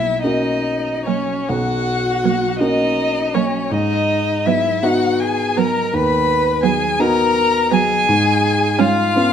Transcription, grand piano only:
Already playing: B1
0.23 A#3 C#4 F#4
1.49 B1
2.60 A#3 C#4 F#4
3.71 G#2
4.83 B3 D#4 F#4
5.93 D#2
6.99 B3 D#4 F#4
8.09 G#2
9.15 B3 C#4 F4

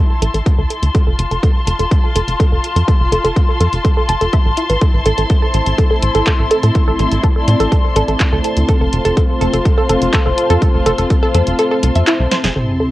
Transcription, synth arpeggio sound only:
0.22 A4
0.34 A4
0.58 A4
0.70 A4
0.95 A4
1.07 A4
1.31 A4
1.43 A4
1.67 A4
1.79 A4
2.04 A4
2.16 A4
2.40 A4
2.52 A4
2.76 A4
2.88 A4
3.12 A4
3.25 A4
3.49 A4
3.61 A4
3.85 A4
3.97 A4
4.09 A5
4.21 A4
4.33 E5
4.57 E4
4.70 B4
4.82 A4
5.06 A4
5.18 A4
5.42 A4
5.54 A4
5.78 A4
5.91 A4
6.15 A4
6.27 A4
6.51 A4
6.63 A4
6.88 A4
7.00 A4
7.24 A4
7.36 A4
7.60 A4
7.72 A4
7.96 A4
8.08 A4
8.33 A4
8.45 A4
8.69 A4
8.81 A4
9.05 A4
9.17 A4
9.41 A4
9.53 A4
9.78 A4
9.90 A4
10.14 A4
10.26 A4
10.50 A4
10.62 A4
10.86 A4
10.99 A4
11.23 A4
11.35 A4
11.59 A4
11.71 A4
11.96 E5
12.07 E4
12.32 C5
12.44 G#4
12.56 A4
12.80 A4

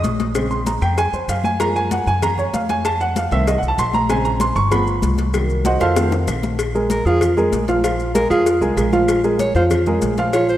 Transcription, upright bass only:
0.04 A#1
0.81 F2
1.13 F2
1.28 F#2
2.06 F#2
2.53 F2
3.31 C2
3.62 C2
3.78 A#1
4.56 G1
5.02 C2
5.80 F2
6.27 A#1
7.05 F2
7.52 A#1
8.30 F2
8.61 C2
8.77 A#1
9.54 F2
10.01 A#1

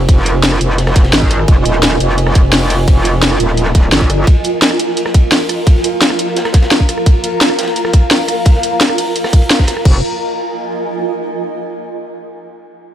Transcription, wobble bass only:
Already playing: F1
0.61 F1
1.13 G#1
1.48 F1
1.66 D#1
2.00 F1
2.53 F1
3.40 D#1
3.92 G1
9.85 F1

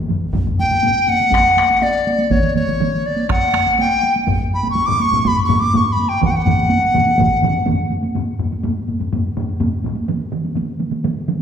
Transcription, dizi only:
0.59 G5
1.09 F#5
1.82 D5
2.31 C#5
2.56 C#5
3.06 D5
3.30 F#5
3.80 G5
4.54 B5
4.70 C#6
4.86 D6
5.02 C#6
5.28 B5
5.44 C#6
5.60 D6
5.77 C#6
5.92 B5
6.09 G5
6.25 F#5
6.31 G5
6.36 F#5

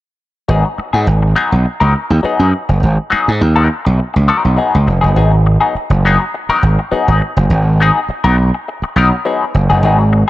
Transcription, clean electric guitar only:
0.48 F#3 B3 D#4 G#4
0.65 muted clean electric guitar stroke
0.78 muted clean electric guitar stroke
0.93 F#3 B3 D#4 G#4
1.07 muted clean electric guitar stroke
1.23 muted clean electric guitar stroke
1.36 F#3 B3 D#4 G#4
1.51 muted clean electric guitar stroke
1.65 muted clean electric guitar stroke
1.80 F#3 B3 D#4 A#4
1.95 muted clean electric guitar stroke
2.11 muted clean electric guitar stroke
2.23 F#3 B3 D#4 G#4
2.53 muted clean electric guitar stroke
2.69 muted clean electric guitar stroke
3.10 F#3 B3 D#4 G#4
3.40 muted clean electric guitar stroke
3.56 F#3 B3 D#4 A#4
3.69 muted clean electric guitar stroke
3.85 muted clean electric guitar stroke
3.99 muted clean electric guitar stroke
4.14 muted clean electric guitar stroke
4.28 F#3 B3 D#4 A#4
4.45 muted clean electric guitar stroke
4.57 F#3 B3 D#4 G#4
4.87 muted clean electric guitar stroke
5.01 F#3 B3 D#4 G#4
5.16 F#3 B3 D#4 G#4
5.33 muted clean electric guitar stroke
5.46 muted clean electric guitar stroke
5.61 F#3 B3 D#4 G#4
5.76 muted clean electric guitar stroke
5.91 muted clean electric guitar stroke
6.05 F#3 B3 D#4 G#4
6.21 muted clean electric guitar stroke
6.34 muted clean electric guitar stroke
6.50 F#3 B3 D#4 A#4
6.64 muted clean electric guitar stroke
6.79 muted clean electric guitar stroke
6.92 F#3 B3 D#4 G#4
7.21 muted clean electric guitar stroke
7.38 muted clean electric guitar stroke
7.80 F#3 B3 D#4 G#4
8.10 muted clean electric guitar stroke
8.24 F#3 B3 D#4 A#4
8.37 muted clean electric guitar stroke
8.54 muted clean electric guitar stroke
8.68 muted clean electric guitar stroke
8.84 muted clean electric guitar stroke
8.96 F#3 B3 D#4 A#4
9.12 muted clean electric guitar stroke
9.25 F#3 B3 D#4 G#4
9.55 muted clean electric guitar stroke
9.70 F#3 B3 D#4 G#4
9.84 F#3 B3 D#4 G#4
9.99 muted clean electric guitar stroke
10.13 muted clean electric guitar stroke

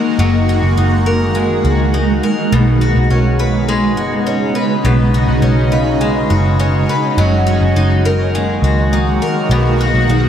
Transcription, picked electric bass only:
0.18 F#1
0.62 F#1
0.77 F#1
1.64 C#2
2.52 B1
2.95 B1
3.09 B1
3.97 F#1
4.84 B1
5.27 B1
5.42 B1
6.30 F#1
7.17 F#1
7.60 F#1
7.74 F#1
8.62 C#2
9.49 B1
9.93 B1
10.08 B1

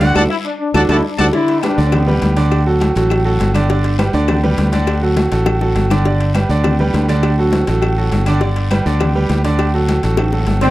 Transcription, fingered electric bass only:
Already playing: D2
0.15 D2
0.74 D2
0.89 D2
1.19 D2
1.78 D2
2.22 D2
2.96 A1
3.40 G1
4.14 D2
4.58 D2
5.32 A1
5.76 G1
6.49 D2
6.94 D2
7.68 A1
8.12 G1
8.86 D2
9.30 D2
10.04 A1
10.47 G1

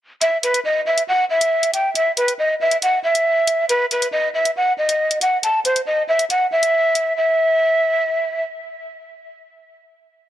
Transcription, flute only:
0.21 E5
0.43 B4
0.65 D#5
0.86 E5
1.08 F#5
1.30 E5
1.73 G5
1.95 E5
2.17 B4
2.39 D#5
2.61 E5
2.83 F#5
3.04 E5
3.69 B4
3.92 B4
4.12 D#5
4.34 E5
4.57 F#5
4.78 D#5
5.22 F#5
5.43 A5
5.65 C5
5.86 D#5
6.08 E5
6.30 F#5
6.52 E5
7.17 E5

